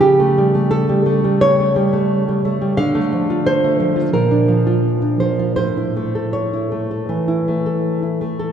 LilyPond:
\new Staff \with { instrumentName = "Nylon-string guitar" } { \time 4/4 \key a \phrygian \tempo 4 = 86 << { g'4 a'4 cis''4. r8 | f''4 c''4 bes'4. c''8 | c''4 cis''2~ cis''8 r8 | } \\ { cis16 a16 g16 a8 g16 a16 g16 cis16 a16 g16 a8 g16 a16 g16 | d16 a16 f16 f'8 a16 f16 f'16 bes,16 d'16 f16 f'8 d'16 f16 f'16 | a,16 e'16 a16 a'8 e'16 a16 a'16 e16 e'16 a16 a'8 e'16 a16 a'16 | } >> }